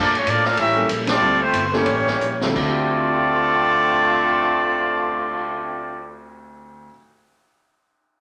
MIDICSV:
0, 0, Header, 1, 7, 480
1, 0, Start_track
1, 0, Key_signature, -1, "minor"
1, 0, Tempo, 310881
1, 1862, Time_signature, 4, 2, 24, 8
1, 1862, Tempo, 332042
1, 3302, Tempo, 357569
1, 11358, End_track
2, 0, Start_track
2, 0, Title_t, "Trumpet section"
2, 0, Program_c, 0, 61
2, 0, Note_on_c, 0, 58, 81
2, 0, Note_on_c, 0, 65, 86
2, 0, Note_on_c, 0, 69, 95
2, 0, Note_on_c, 0, 74, 101
2, 228, Note_off_c, 0, 69, 0
2, 230, Note_off_c, 0, 58, 0
2, 233, Note_off_c, 0, 74, 0
2, 235, Note_off_c, 0, 65, 0
2, 271, Note_on_c, 0, 62, 76
2, 274, Note_on_c, 0, 73, 91
2, 276, Note_on_c, 0, 57, 78
2, 278, Note_on_c, 0, 65, 84
2, 424, Note_off_c, 0, 65, 0
2, 435, Note_on_c, 0, 74, 95
2, 436, Note_off_c, 0, 62, 0
2, 436, Note_on_c, 0, 58, 85
2, 437, Note_off_c, 0, 73, 0
2, 439, Note_off_c, 0, 57, 0
2, 442, Note_on_c, 0, 65, 86
2, 446, Note_on_c, 0, 69, 86
2, 696, Note_off_c, 0, 69, 0
2, 704, Note_on_c, 0, 77, 98
2, 705, Note_on_c, 0, 62, 95
2, 707, Note_on_c, 0, 70, 98
2, 713, Note_off_c, 0, 58, 0
2, 713, Note_off_c, 0, 74, 0
2, 715, Note_on_c, 0, 69, 90
2, 716, Note_off_c, 0, 65, 0
2, 891, Note_off_c, 0, 77, 0
2, 892, Note_off_c, 0, 62, 0
2, 893, Note_off_c, 0, 70, 0
2, 896, Note_off_c, 0, 69, 0
2, 925, Note_on_c, 0, 67, 87
2, 929, Note_on_c, 0, 70, 86
2, 934, Note_on_c, 0, 61, 84
2, 935, Note_on_c, 0, 76, 108
2, 1357, Note_off_c, 0, 67, 0
2, 1359, Note_off_c, 0, 70, 0
2, 1361, Note_off_c, 0, 61, 0
2, 1362, Note_off_c, 0, 76, 0
2, 1694, Note_on_c, 0, 60, 83
2, 1699, Note_on_c, 0, 74, 102
2, 1702, Note_on_c, 0, 65, 93
2, 1705, Note_on_c, 0, 69, 93
2, 2125, Note_off_c, 0, 60, 0
2, 2128, Note_off_c, 0, 74, 0
2, 2129, Note_off_c, 0, 65, 0
2, 2131, Note_off_c, 0, 69, 0
2, 2164, Note_on_c, 0, 64, 90
2, 2165, Note_on_c, 0, 72, 93
2, 2166, Note_on_c, 0, 57, 79
2, 2171, Note_on_c, 0, 65, 83
2, 2490, Note_off_c, 0, 72, 0
2, 2496, Note_off_c, 0, 64, 0
2, 2497, Note_off_c, 0, 57, 0
2, 2499, Note_off_c, 0, 65, 0
2, 2508, Note_on_c, 0, 72, 68
2, 2629, Note_on_c, 0, 67, 71
2, 2630, Note_off_c, 0, 72, 0
2, 2632, Note_on_c, 0, 58, 80
2, 2634, Note_on_c, 0, 64, 76
2, 2642, Note_on_c, 0, 73, 90
2, 3592, Note_off_c, 0, 67, 0
2, 3593, Note_off_c, 0, 58, 0
2, 3594, Note_off_c, 0, 64, 0
2, 3598, Note_off_c, 0, 73, 0
2, 3776, Note_on_c, 0, 65, 87
2, 3781, Note_on_c, 0, 60, 88
2, 3783, Note_on_c, 0, 74, 95
2, 3785, Note_on_c, 0, 69, 94
2, 8639, Note_off_c, 0, 65, 0
2, 8642, Note_off_c, 0, 60, 0
2, 8643, Note_off_c, 0, 74, 0
2, 8644, Note_off_c, 0, 69, 0
2, 11358, End_track
3, 0, Start_track
3, 0, Title_t, "Grand piano"
3, 0, Program_c, 1, 0
3, 1182, Note_on_c, 1, 58, 55
3, 1187, Note_on_c, 1, 55, 60
3, 1189, Note_on_c, 1, 61, 53
3, 1194, Note_on_c, 1, 69, 76
3, 1195, Note_on_c, 1, 64, 53
3, 1823, Note_off_c, 1, 58, 0
3, 1825, Note_off_c, 1, 55, 0
3, 1826, Note_off_c, 1, 61, 0
3, 1829, Note_off_c, 1, 69, 0
3, 1830, Note_off_c, 1, 64, 0
3, 1873, Note_on_c, 1, 60, 61
3, 1874, Note_on_c, 1, 64, 57
3, 1878, Note_on_c, 1, 55, 71
3, 1883, Note_on_c, 1, 65, 60
3, 1888, Note_on_c, 1, 69, 70
3, 2121, Note_off_c, 1, 60, 0
3, 2122, Note_off_c, 1, 64, 0
3, 2124, Note_off_c, 1, 55, 0
3, 2126, Note_off_c, 1, 65, 0
3, 2129, Note_off_c, 1, 69, 0
3, 2630, Note_on_c, 1, 58, 78
3, 2638, Note_on_c, 1, 64, 69
3, 2641, Note_on_c, 1, 61, 80
3, 2642, Note_on_c, 1, 69, 88
3, 2651, Note_on_c, 1, 67, 77
3, 2796, Note_off_c, 1, 58, 0
3, 2800, Note_off_c, 1, 64, 0
3, 2801, Note_off_c, 1, 61, 0
3, 2802, Note_off_c, 1, 69, 0
3, 2806, Note_off_c, 1, 67, 0
3, 3592, Note_on_c, 1, 50, 61
3, 3599, Note_on_c, 1, 55, 57
3, 3604, Note_on_c, 1, 60, 66
3, 3609, Note_on_c, 1, 64, 64
3, 3612, Note_on_c, 1, 69, 76
3, 3613, Note_on_c, 1, 65, 61
3, 3624, Note_on_c, 1, 38, 72
3, 3673, Note_off_c, 1, 50, 0
3, 3693, Note_on_c, 1, 50, 65
3, 3735, Note_off_c, 1, 60, 0
3, 3756, Note_on_c, 1, 60, 60
3, 3762, Note_off_c, 1, 55, 0
3, 3767, Note_off_c, 1, 64, 0
3, 3769, Note_off_c, 1, 65, 0
3, 3769, Note_off_c, 1, 69, 0
3, 3826, Note_on_c, 1, 76, 61
3, 3888, Note_on_c, 1, 65, 59
3, 3953, Note_on_c, 1, 67, 81
3, 9557, Note_off_c, 1, 38, 0
3, 9591, Note_off_c, 1, 50, 0
3, 9623, Note_off_c, 1, 60, 0
3, 9658, Note_off_c, 1, 76, 0
3, 9689, Note_off_c, 1, 65, 0
3, 9721, Note_off_c, 1, 67, 0
3, 11358, End_track
4, 0, Start_track
4, 0, Title_t, "Trombone section"
4, 0, Program_c, 2, 61
4, 0, Note_on_c, 2, 53, 92
4, 0, Note_on_c, 2, 58, 101
4, 0, Note_on_c, 2, 62, 89
4, 206, Note_off_c, 2, 58, 0
4, 206, Note_off_c, 2, 62, 0
4, 210, Note_off_c, 2, 53, 0
4, 245, Note_on_c, 2, 61, 73
4, 408, Note_on_c, 2, 62, 101
4, 409, Note_on_c, 2, 58, 99
4, 410, Note_on_c, 2, 53, 95
4, 423, Note_off_c, 2, 61, 0
4, 685, Note_off_c, 2, 58, 0
4, 699, Note_off_c, 2, 62, 0
4, 700, Note_off_c, 2, 53, 0
4, 703, Note_on_c, 2, 58, 87
4, 707, Note_on_c, 2, 65, 86
4, 715, Note_on_c, 2, 62, 84
4, 884, Note_on_c, 2, 61, 88
4, 886, Note_on_c, 2, 64, 90
4, 891, Note_off_c, 2, 58, 0
4, 892, Note_on_c, 2, 55, 90
4, 893, Note_off_c, 2, 65, 0
4, 897, Note_off_c, 2, 62, 0
4, 1335, Note_off_c, 2, 61, 0
4, 1336, Note_off_c, 2, 64, 0
4, 1339, Note_off_c, 2, 55, 0
4, 1632, Note_on_c, 2, 62, 100
4, 1636, Note_on_c, 2, 53, 99
4, 1645, Note_on_c, 2, 57, 94
4, 2093, Note_off_c, 2, 62, 0
4, 2096, Note_off_c, 2, 53, 0
4, 2101, Note_off_c, 2, 57, 0
4, 2141, Note_on_c, 2, 53, 88
4, 2142, Note_on_c, 2, 57, 89
4, 2145, Note_on_c, 2, 60, 89
4, 2484, Note_off_c, 2, 53, 0
4, 2485, Note_off_c, 2, 57, 0
4, 2486, Note_off_c, 2, 60, 0
4, 2618, Note_on_c, 2, 61, 77
4, 2622, Note_on_c, 2, 55, 82
4, 2625, Note_on_c, 2, 52, 76
4, 3587, Note_off_c, 2, 61, 0
4, 3588, Note_off_c, 2, 55, 0
4, 3590, Note_off_c, 2, 52, 0
4, 3775, Note_on_c, 2, 65, 106
4, 3784, Note_on_c, 2, 57, 113
4, 3786, Note_on_c, 2, 60, 103
4, 3790, Note_on_c, 2, 50, 101
4, 8639, Note_off_c, 2, 65, 0
4, 8644, Note_off_c, 2, 57, 0
4, 8644, Note_off_c, 2, 60, 0
4, 8646, Note_off_c, 2, 50, 0
4, 11358, End_track
5, 0, Start_track
5, 0, Title_t, "Upright bass"
5, 0, Program_c, 3, 32
5, 0, Note_on_c, 3, 43, 80
5, 397, Note_off_c, 3, 43, 0
5, 413, Note_on_c, 3, 45, 100
5, 875, Note_off_c, 3, 45, 0
5, 883, Note_on_c, 3, 33, 96
5, 1354, Note_off_c, 3, 33, 0
5, 1368, Note_on_c, 3, 34, 97
5, 1842, Note_off_c, 3, 34, 0
5, 1851, Note_on_c, 3, 38, 77
5, 2310, Note_off_c, 3, 38, 0
5, 2332, Note_on_c, 3, 31, 102
5, 2796, Note_off_c, 3, 31, 0
5, 2807, Note_on_c, 3, 33, 88
5, 3283, Note_off_c, 3, 33, 0
5, 3292, Note_on_c, 3, 34, 91
5, 3756, Note_off_c, 3, 34, 0
5, 3774, Note_on_c, 3, 38, 90
5, 9578, Note_off_c, 3, 38, 0
5, 11358, End_track
6, 0, Start_track
6, 0, Title_t, "Cymbal swell"
6, 4068, Note_on_c, 9, 59, 48
6, 7506, Note_off_c, 9, 59, 0
6, 11358, End_track
7, 0, Start_track
7, 0, Title_t, "Drums"
7, 233, Note_on_c, 9, 51, 52
7, 388, Note_off_c, 9, 51, 0
7, 413, Note_on_c, 9, 44, 72
7, 413, Note_on_c, 9, 51, 78
7, 416, Note_on_c, 9, 36, 17
7, 568, Note_off_c, 9, 44, 0
7, 568, Note_off_c, 9, 51, 0
7, 570, Note_off_c, 9, 36, 0
7, 694, Note_on_c, 9, 38, 42
7, 848, Note_off_c, 9, 38, 0
7, 885, Note_on_c, 9, 51, 74
7, 889, Note_on_c, 9, 36, 24
7, 1039, Note_off_c, 9, 51, 0
7, 1043, Note_off_c, 9, 36, 0
7, 1376, Note_on_c, 9, 36, 21
7, 1377, Note_on_c, 9, 44, 68
7, 1377, Note_on_c, 9, 51, 90
7, 1530, Note_off_c, 9, 36, 0
7, 1532, Note_off_c, 9, 44, 0
7, 1532, Note_off_c, 9, 51, 0
7, 1656, Note_on_c, 9, 51, 75
7, 1659, Note_on_c, 9, 38, 90
7, 1810, Note_off_c, 9, 51, 0
7, 1814, Note_off_c, 9, 38, 0
7, 2337, Note_on_c, 9, 36, 21
7, 2339, Note_on_c, 9, 44, 65
7, 2339, Note_on_c, 9, 51, 71
7, 2482, Note_off_c, 9, 36, 0
7, 2483, Note_off_c, 9, 44, 0
7, 2483, Note_off_c, 9, 51, 0
7, 2625, Note_on_c, 9, 38, 42
7, 2769, Note_off_c, 9, 38, 0
7, 2805, Note_on_c, 9, 51, 72
7, 2815, Note_on_c, 9, 36, 29
7, 2950, Note_off_c, 9, 51, 0
7, 2959, Note_off_c, 9, 36, 0
7, 3114, Note_on_c, 9, 38, 47
7, 3259, Note_off_c, 9, 38, 0
7, 3305, Note_on_c, 9, 44, 71
7, 3439, Note_off_c, 9, 44, 0
7, 3585, Note_on_c, 9, 38, 76
7, 3719, Note_off_c, 9, 38, 0
7, 3781, Note_on_c, 9, 36, 62
7, 3781, Note_on_c, 9, 49, 66
7, 3915, Note_off_c, 9, 49, 0
7, 3916, Note_off_c, 9, 36, 0
7, 11358, End_track
0, 0, End_of_file